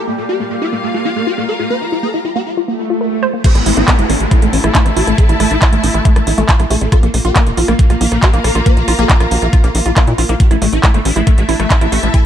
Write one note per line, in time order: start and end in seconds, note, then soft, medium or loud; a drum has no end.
0.00 2.57 G3 medium
0.00 2.57 A#3 medium
0.00 2.57 G4 medium
0.07 0.12 A#3 medium
0.07 0.14 A#3 medium
0.18 0.23 A#3 medium
0.24 2.57 F4 medium
0.24 2.57 F5 medium
0.29 0.33 F4 medium
0.29 0.34 G4 medium
0.40 0.44 A#3 medium
0.40 0.46 A#3 medium
0.51 0.55 A#3 medium
0.62 0.66 F4 medium
0.72 0.77 A#3 medium
0.72 0.79 A#3 medium
0.83 0.88 A#3 medium
0.94 0.99 A#3 medium
0.94 0.98 F4 medium
1.05 1.11 A#3 medium
1.05 1.10 F4 medium
1.16 1.21 A#3 medium
1.27 1.31 F4 medium
1.27 1.31 G4 medium
1.38 1.42 A#3 medium
1.38 1.44 A#3 medium
1.46 1.53 A#4 medium
1.46 2.57 A#5 medium
1.60 1.64 A#3 medium
1.60 1.63 F4 medium
1.70 1.77 A#3 medium
1.70 1.75 C5 loud
1.81 1.86 F4 medium
1.92 1.96 F4 medium
1.92 1.97 F4 medium
2.03 2.09 A#3 medium
2.03 2.08 A4 loud
2.14 2.18 F4 medium
2.25 2.29 F4 medium
2.36 2.42 A#3 medium
2.36 2.40 G4 medium
2.47 2.51 F4 medium
2.57 2.61 F4 medium
2.57 swell medium
2.68 2.75 A#3 medium
2.90 2.94 F4 medium
3.01 3.10 A#4 medium
3.23 3.29 C5 loud
3.33 3.37 A#3 medium
3.44 6.92 A3 loud
3.44 3.51 A3 medium
3.44 3.49 G4 loud
3.44 kick loud
3.44 closed hi-hat medium
3.44 crash loud
3.44 downlifter medium
3.54 3.61 A1 medium
3.54 3.60 A3 medium
3.54 6.92 E4 loud
3.54 cross-stick soft
3.54 closed hi-hat medium
3.66 3.72 A1 loud
3.66 3.71 A3 medium
3.66 3.70 E4 medium
3.66 open hi-hat loud
3.77 3.83 A1 medium
3.77 3.83 A3 medium
3.77 3.82 E4 loud
3.77 closed hi-hat medium
3.88 3.92 A3 medium
3.88 kick loud
3.88 cross-stick medium
3.88 clap loud
3.88 closed hi-hat medium
3.99 4.05 G1 medium
3.99 4.03 A3 medium
3.99 4.02 E4 medium
3.99 closed hi-hat medium
4.10 4.16 A1 loud
4.10 4.16 A3 medium
4.10 4.14 D4 medium
4.10 cross-stick soft
4.10 open hi-hat loud
4.20 4.27 A1 medium
4.20 4.25 A3 medium
4.20 6.92 A5 medium
4.20 closed hi-hat medium
4.31 4.36 A3 medium
4.31 4.35 E4 medium
4.31 6.92 E5 medium
4.31 kick loud
4.31 cross-stick soft
4.31 closed hi-hat medium
4.42 4.48 A1 medium
4.42 4.47 A3 medium
4.42 4.48 A3 medium
4.42 closed hi-hat medium
4.53 4.59 A1 loud
4.53 4.58 D4 medium
4.53 open hi-hat loud
4.64 4.70 A1 medium
4.64 4.68 A3 medium
4.64 4.68 E4 medium
4.64 cross-stick medium
4.64 closed hi-hat medium
4.75 4.81 A3 medium
4.75 4.79 E4 medium
4.75 kick loud
4.75 clap loud
4.75 closed hi-hat medium
4.86 4.92 A1 medium
4.86 4.90 A3 medium
4.86 cross-stick soft
4.86 closed hi-hat medium
4.97 5.03 A1 loud
4.97 5.00 E4 medium
4.97 5.01 G4 medium
4.97 open hi-hat loud
5.07 5.14 A1 medium
5.07 5.12 A3 medium
5.07 5.14 A3 medium
5.07 cross-stick soft
5.07 closed hi-hat medium
5.18 5.23 A4 loud
5.18 kick loud
5.18 closed hi-hat medium
5.29 5.35 A1 medium
5.29 5.34 A3 medium
5.29 5.33 E4 medium
5.29 closed hi-hat medium
5.40 5.46 A1 loud
5.40 5.46 A3 medium
5.40 5.45 A3 medium
5.40 cross-stick medium
5.40 open hi-hat loud
5.51 5.57 A1 medium
5.51 5.55 E4 loud
5.51 closed hi-hat medium
5.62 5.66 A3 medium
5.62 5.66 E4 medium
5.62 kick loud
5.62 cross-stick soft
5.62 clap loud
5.62 closed hi-hat medium
5.73 5.79 A1 medium
5.73 5.77 A3 medium
5.73 5.79 A3 medium
5.73 closed hi-hat medium
5.83 5.90 A1 loud
5.83 5.88 E4 medium
5.83 open hi-hat loud
5.94 6.01 A1 loud
5.94 5.99 A3 medium
5.94 5.98 E4 medium
5.94 closed hi-hat medium
6.05 6.11 A3 medium
6.05 6.10 A3 medium
6.05 kick loud
6.05 closed hi-hat medium
6.16 6.22 A1 medium
6.16 6.21 A3 medium
6.16 cross-stick medium
6.16 closed hi-hat medium
6.27 6.33 A1 loud
6.27 6.31 E4 medium
6.27 open hi-hat loud
6.38 6.44 A1 medium
6.38 6.42 A3 medium
6.38 6.44 A3 medium
6.38 cross-stick soft
6.38 closed hi-hat medium
6.49 6.53 F4 medium
6.49 kick loud
6.49 clap loud
6.49 closed hi-hat medium
6.60 6.66 A#1 medium
6.60 6.64 A3 medium
6.60 6.63 E4 medium
6.60 cross-stick soft
6.60 closed hi-hat medium
6.70 6.77 A#1 loud
6.70 6.77 A3 medium
6.70 6.75 A4 medium
6.70 open hi-hat loud
6.81 6.87 A1 medium
6.81 6.86 A3 medium
6.81 closed hi-hat medium
6.92 10.40 A#3 loud
6.92 6.96 F4 medium
6.92 6.97 A#4 loud
6.92 kick loud
6.92 cross-stick medium
6.92 closed hi-hat medium
7.03 7.09 A#1 medium
7.03 7.09 A#3 medium
7.03 7.08 A#3 medium
7.03 closed hi-hat medium
7.10 7.20 A#1 loud
7.10 7.18 A#3 medium
7.10 10.40 F4 medium
7.10 cross-stick soft
7.10 open hi-hat loud
7.25 7.31 A#1 medium
7.25 7.29 F4 medium
7.25 7.29 G4 loud
7.25 closed hi-hat medium
7.36 7.40 A#3 medium
7.36 7.42 A#3 medium
7.36 kick loud
7.36 cross-stick soft
7.36 clap loud
7.36 closed hi-hat medium
7.40 10.40 F5 medium
7.47 7.53 F1 medium
7.47 7.51 A#3 medium
7.47 closed hi-hat medium
7.57 7.64 A#1 loud
7.57 7.61 F4 medium
7.57 7.62 F4 loud
7.57 open hi-hat loud
7.68 7.74 A#1 medium
7.68 7.73 A#3 medium
7.68 7.75 A#3 medium
7.68 cross-stick medium
7.68 closed hi-hat medium
7.79 7.84 A#3 medium
7.79 kick loud
7.79 closed hi-hat medium
7.90 7.96 A#1 medium
7.90 7.95 A#3 medium
7.90 7.94 F4 medium
7.90 10.40 A#5 medium
7.90 cross-stick soft
7.90 closed hi-hat medium
8.01 8.07 A#1 loud
8.01 8.07 A#3 medium
8.01 8.05 F4 medium
8.01 open hi-hat loud
8.12 8.18 A#1 medium
8.12 8.16 A#3 medium
8.12 cross-stick soft
8.12 closed hi-hat medium
8.23 8.26 F4 medium
8.23 8.27 G4 medium
8.23 kick loud
8.23 clap loud
8.23 closed hi-hat medium
8.33 8.40 A#1 medium
8.33 8.38 A#3 medium
8.33 8.40 A#3 medium
8.33 closed hi-hat medium
8.44 8.50 A#1 loud
8.44 8.49 A#4 medium
8.44 cross-stick medium
8.44 open hi-hat loud
8.55 8.61 A#1 medium
8.55 8.60 A#3 medium
8.55 8.59 F4 medium
8.55 closed hi-hat soft
8.66 8.72 A#3 medium
8.66 8.71 C5 loud
8.66 kick loud
8.66 cross-stick soft
8.66 closed hi-hat medium
8.77 8.83 A#1 medium
8.77 8.81 F4 medium
8.77 closed hi-hat medium
8.88 8.94 A#1 loud
8.88 8.92 F4 medium
8.88 cross-stick soft
8.88 open hi-hat loud
8.99 9.05 A#1 medium
8.99 9.05 A#3 medium
8.99 9.03 A4 loud
8.99 closed hi-hat medium
9.10 9.14 F4 medium
9.10 kick loud
9.10 clap loud
9.10 closed hi-hat medium
9.20 9.27 A#1 medium
9.20 9.25 F4 medium
9.20 9.24 F4 medium
9.20 cross-stick medium
9.20 closed hi-hat medium
9.31 9.37 A#1 loud
9.31 9.38 A#3 medium
9.31 9.36 G4 medium
9.31 open hi-hat loud
9.42 9.48 A#1 medium
9.42 9.47 F4 medium
9.42 cross-stick soft
9.42 closed hi-hat soft
9.53 9.58 F4 medium
9.53 9.57 F4 medium
9.53 kick loud
9.53 closed hi-hat medium
9.64 9.70 A#1 medium
9.64 9.70 A#3 medium
9.64 9.68 F4 medium
9.64 cross-stick soft
9.64 closed hi-hat medium
9.75 9.81 A#1 loud
9.75 9.79 F4 medium
9.75 open hi-hat loud
9.86 9.92 A#1 medium
9.86 9.90 F4 medium
9.86 9.89 F4 medium
9.86 closed hi-hat medium
9.97 10.03 A#3 medium
9.97 10.01 F4 medium
9.97 kick loud
9.97 cross-stick medium
9.97 clap loud
9.97 closed hi-hat medium
10.07 10.14 A#2 medium
10.07 10.12 F4 medium
10.07 closed hi-hat medium
10.18 10.24 A#1 loud
10.18 10.23 F4 medium
10.18 10.22 F4 medium
10.18 cross-stick soft
10.18 open hi-hat loud
10.29 10.35 A#1 medium
10.29 10.35 A#3 medium
10.29 10.34 F4 medium
10.29 closed hi-hat soft
10.40 12.26 A3 medium
10.40 10.45 G4 loud
10.40 kick loud
10.40 closed hi-hat medium
10.51 10.57 A1 medium
10.51 10.55 A3 medium
10.51 10.55 E4 medium
10.51 cross-stick soft
10.51 closed hi-hat medium
10.62 10.68 A1 loud
10.62 10.66 A3 medium
10.62 10.68 A3 medium
10.62 open hi-hat loud
10.73 10.79 A1 medium
10.73 10.77 E4 loud
10.73 12.26 E5 medium
10.73 closed hi-hat medium
10.82 10.88 A3 medium
10.82 12.26 E4 medium
10.82 10.87 E4 medium
10.82 kick loud
10.82 cross-stick medium
10.82 clap loud
10.82 closed hi-hat medium
10.94 11.00 G1 medium
10.94 11.01 A3 medium
10.94 10.99 A3 medium
10.94 closed hi-hat medium
11.05 11.11 A1 loud
11.05 11.10 D4 loud
11.05 cross-stick soft
11.05 open hi-hat loud
11.16 11.22 A1 medium
11.16 11.21 A3 medium
11.16 11.20 E4 medium
11.16 closed hi-hat medium
11.27 11.33 A3 medium
11.27 11.32 A3 medium
11.27 kick loud
11.27 cross-stick soft
11.27 closed hi-hat medium
11.33 12.26 A5 medium
11.38 11.44 A1 medium
11.38 11.42 A3 medium
11.38 closed hi-hat medium
11.49 11.55 A1 loud
11.49 11.53 D4 medium
11.49 11.52 E4 medium
11.49 open hi-hat loud
11.60 11.66 A1 medium
11.60 11.66 A3 medium
11.60 11.64 A3 medium
11.60 cross-stick medium
11.60 closed hi-hat medium
11.70 11.75 E4 medium
11.70 kick loud
11.70 clap loud
11.70 closed hi-hat medium
11.81 11.87 A1 medium
11.81 11.86 A3 medium
11.81 11.85 E4 medium
11.81 cross-stick soft
11.81 closed hi-hat soft
11.92 11.98 A1 loud
11.92 11.98 A3 medium
11.92 11.97 G4 medium
11.92 open hi-hat loud
12.03 12.09 A1 medium
12.03 12.08 A3 medium
12.03 cross-stick soft
12.03 closed hi-hat soft
12.14 12.18 E4 medium
12.14 12.18 A4 loud
12.14 kick loud
12.14 closed hi-hat medium